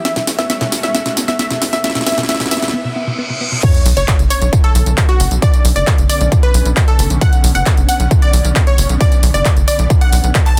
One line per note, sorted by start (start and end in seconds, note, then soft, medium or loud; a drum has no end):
0.00 riser medium
0.05 2.71 A3 medium
0.05 0.08 B3 medium
0.05 2.71 C#4 medium
0.05 1.82 F#4 medium
0.05 0.25 E5 medium
0.05 snare loud
0.05 closed hi-hat loud
0.05 tambourine soft
0.16 0.19 B2 medium
0.16 snare medium
0.16 closed hi-hat medium
0.16 tambourine soft
0.27 0.35 F#1 medium
0.27 0.32 B3 medium
0.27 snare medium
0.27 open hi-hat loud
0.27 tambourine medium
0.39 0.46 F#2 medium
0.39 0.46 B3 loud
0.39 0.48 E5 loud
0.39 snare medium
0.39 closed hi-hat medium
0.39 tambourine soft
0.50 0.53 B3 medium
0.50 0.70 E5 loud
0.50 snare loud
0.50 closed hi-hat medium
0.50 tambourine soft
0.61 0.69 F#2 medium
0.61 0.64 B2 medium
0.61 snare medium
0.61 closed hi-hat medium
0.72 0.77 B3 medium
0.72 snare medium
0.72 open hi-hat loud
0.72 tambourine medium
0.83 0.91 F#1 medium
0.83 0.91 B3 loud
0.83 0.93 E5 medium
0.83 snare medium
0.83 closed hi-hat medium
0.83 tambourine soft
0.94 0.98 B3 medium
0.94 1.15 E5 medium
0.94 snare medium
0.94 closed hi-hat medium
0.94 tambourine soft
1.06 1.09 B2 medium
1.06 snare medium
1.06 closed hi-hat medium
1.06 tambourine soft
1.17 1.25 F#1 medium
1.17 1.22 B3 medium
1.17 snare loud
1.17 open hi-hat loud
1.17 tambourine medium
1.28 1.36 F#1 medium
1.28 1.36 B3 loud
1.28 1.38 E5 medium
1.28 snare medium
1.28 closed hi-hat medium
1.28 tambourine soft
1.39 1.42 B3 medium
1.39 1.60 E5 loud
1.39 snare loud
1.39 closed hi-hat loud
1.39 tambourine soft
1.50 1.54 B2 medium
1.50 snare medium
1.50 closed hi-hat medium
1.50 tambourine soft
1.62 1.70 F#1 medium
1.62 1.67 B3 medium
1.62 snare loud
1.62 open hi-hat loud
1.62 tambourine medium
1.73 1.81 F#1 medium
1.73 1.80 B3 loud
1.73 1.82 E5 loud
1.73 snare medium
1.73 closed hi-hat medium
1.73 tambourine soft
1.84 1.87 B3 medium
1.84 2.73 E4 medium
1.84 2.04 E5 loud
1.84 snare loud
1.84 closed hi-hat loud
1.84 tambourine soft
1.90 snare medium
1.95 1.98 B2 medium
1.95 snare medium
1.95 closed hi-hat medium
1.95 tambourine soft
2.01 snare medium
2.06 2.14 F#1 medium
2.06 2.10 B3 medium
2.06 2.27 E5 loud
2.06 snare loud
2.06 open hi-hat loud
2.06 tambourine medium
2.12 snare medium
2.18 2.26 F#2 medium
2.18 2.21 B2 medium
2.18 snare loud
2.18 closed hi-hat medium
2.18 tambourine soft
2.23 snare medium
2.29 2.32 B3 medium
2.29 2.49 E5 loud
2.29 snare loud
2.29 closed hi-hat loud
2.29 tambourine soft
2.34 snare loud
2.40 2.48 F#2 medium
2.40 2.43 B2 medium
2.40 snare medium
2.40 open hi-hat medium
2.40 tambourine soft
2.46 snare medium
2.51 2.54 B3 medium
2.51 2.72 E5 loud
2.51 snare loud
2.51 open hi-hat loud
2.51 tambourine medium
2.57 snare medium
2.62 2.70 F#1 medium
2.62 2.65 B2 medium
2.62 snare medium
2.62 closed hi-hat medium
2.62 tambourine soft
2.68 snare medium
2.74 2.77 B3 medium
2.74 reverse cymbal medium
2.85 2.88 B2 medium
2.96 2.99 B3 medium
3.07 3.10 B2 medium
3.18 3.21 B3 medium
3.30 3.33 B2 medium
3.41 3.44 B3 medium
3.52 3.55 B2 medium
3.63 10.60 D3 medium
3.63 10.60 B3 medium
3.63 10.60 C#4 medium
3.63 3.83 C#5 loud
3.63 3.83 C#5 medium
3.63 kick loud
3.63 closed hi-hat medium
3.63 crash loud
3.63 tambourine soft
3.63 sub drop medium
3.74 closed hi-hat medium
3.74 tambourine soft
3.86 3.93 B1 medium
3.86 open hi-hat loud
3.86 tambourine medium
3.97 4.05 F#1 medium
3.97 4.17 C#5 loud
3.97 closed hi-hat medium
3.97 tambourine soft
4.08 kick loud
4.08 clap loud
4.08 closed hi-hat medium
4.08 tambourine soft
4.19 4.27 F#1 medium
4.19 closed hi-hat medium
4.19 tambourine soft
4.30 4.51 C#5 loud
4.30 open hi-hat loud
4.30 tambourine medium
4.42 4.49 B1 medium
4.42 closed hi-hat medium
4.42 tambourine soft
4.53 kick loud
4.53 closed hi-hat medium
4.53 tambourine soft
4.64 4.91 A4 medium
4.64 closed hi-hat medium
4.75 4.83 B1 medium
4.75 open hi-hat loud
4.75 tambourine medium
4.86 4.94 B1 medium
4.86 closed hi-hat medium
4.86 tambourine soft
4.98 kick loud
4.98 clap loud
4.98 closed hi-hat medium
4.98 tambourine soft
5.09 5.29 F#4 medium
5.09 5.29 F#4 loud
5.09 closed hi-hat medium
5.20 5.28 F#1 medium
5.20 open hi-hat loud
5.20 tambourine medium
5.31 5.39 B1 medium
5.31 closed hi-hat medium
5.31 tambourine soft
5.42 5.63 D5 loud
5.42 kick loud
5.42 closed hi-hat medium
5.42 tambourine soft
5.54 closed hi-hat medium
5.54 tambourine soft
5.65 5.73 B1 loud
5.65 open hi-hat loud
5.65 tambourine medium
5.76 5.84 F#1 medium
5.76 5.96 D5 loud
5.76 5.96 D5 medium
5.76 closed hi-hat medium
5.76 tambourine soft
5.87 kick loud
5.87 clap loud
5.87 closed hi-hat medium
5.87 tambourine soft
5.98 6.06 F#1 medium
5.98 closed hi-hat medium
5.98 tambourine soft
6.09 6.30 D5 medium
6.09 open hi-hat loud
6.09 tambourine medium
6.21 6.29 B1 medium
6.21 closed hi-hat medium
6.21 tambourine soft
6.32 kick loud
6.32 closed hi-hat medium
6.32 tambourine soft
6.43 6.70 B4 medium
6.43 6.70 B4 loud
6.43 closed hi-hat medium
6.54 6.62 B1 medium
6.54 open hi-hat loud
6.54 tambourine medium
6.65 6.73 B1 medium
6.65 closed hi-hat medium
6.65 tambourine soft
6.77 kick loud
6.77 clap loud
6.77 closed hi-hat medium
6.77 tambourine soft
6.88 7.08 A4 loud
6.88 closed hi-hat medium
6.99 7.07 F#1 loud
6.99 open hi-hat loud
6.99 tambourine medium
7.10 7.18 B1 medium
7.10 closed hi-hat medium
7.10 tambourine soft
7.21 7.42 F#5 loud
7.21 kick loud
7.21 closed hi-hat medium
7.21 tambourine soft
7.33 closed hi-hat medium
7.33 tambourine soft
7.44 7.52 B1 loud
7.44 open hi-hat loud
7.44 tambourine medium
7.55 7.63 F#1 medium
7.55 7.75 F#5 loud
7.55 closed hi-hat medium
7.55 tambourine soft
7.66 kick loud
7.66 clap loud
7.66 closed hi-hat medium
7.66 tambourine soft
7.77 7.85 F#1 medium
7.77 closed hi-hat medium
7.77 tambourine soft
7.89 8.09 F#5 medium
7.89 8.09 F#5 loud
7.89 open hi-hat loud
7.89 tambourine medium
8.00 8.08 B1 medium
8.00 closed hi-hat medium
8.00 tambourine soft
8.11 kick loud
8.11 closed hi-hat medium
8.11 tambourine soft
8.22 8.49 D5 medium
8.22 closed hi-hat medium
8.33 8.41 B1 medium
8.33 open hi-hat loud
8.33 tambourine medium
8.45 8.52 B1 medium
8.45 closed hi-hat medium
8.45 tambourine soft
8.56 kick loud
8.56 clap loud
8.56 closed hi-hat medium
8.56 tambourine soft
8.67 8.87 C#5 loud
8.67 8.87 C#5 medium
8.67 closed hi-hat medium
8.78 8.86 F#1 medium
8.78 open hi-hat loud
8.78 tambourine medium
8.89 8.97 B1 medium
8.89 closed hi-hat medium
8.89 tambourine soft
9.01 9.21 D5 medium
9.01 9.21 D5 loud
9.01 kick loud
9.01 closed hi-hat medium
9.01 tambourine soft
9.12 closed hi-hat soft
9.12 tambourine soft
9.23 9.31 B1 loud
9.23 open hi-hat loud
9.23 tambourine medium
9.34 9.42 F#1 medium
9.34 9.54 D5 medium
9.34 9.54 D5 loud
9.34 closed hi-hat medium
9.34 tambourine soft
9.45 kick loud
9.45 clap loud
9.45 closed hi-hat medium
9.45 tambourine soft
9.57 9.64 F#1 medium
9.57 closed hi-hat medium
9.57 tambourine soft
9.68 9.88 D5 medium
9.68 9.88 D5 loud
9.68 open hi-hat loud
9.68 tambourine medium
9.79 9.87 B1 medium
9.79 closed hi-hat soft
9.79 tambourine soft
9.90 kick loud
9.90 closed hi-hat medium
9.90 tambourine soft
10.01 10.28 F#5 medium
10.01 10.28 F#5 loud
10.01 closed hi-hat medium
10.12 10.20 B1 medium
10.12 open hi-hat loud
10.12 tambourine medium
10.24 10.32 B1 medium
10.24 closed hi-hat soft
10.24 tambourine soft
10.35 kick loud
10.35 clap loud
10.35 closed hi-hat medium
10.35 tambourine soft
10.46 10.60 A5 medium
10.46 clap soft
10.46 closed hi-hat soft
10.46 tambourine soft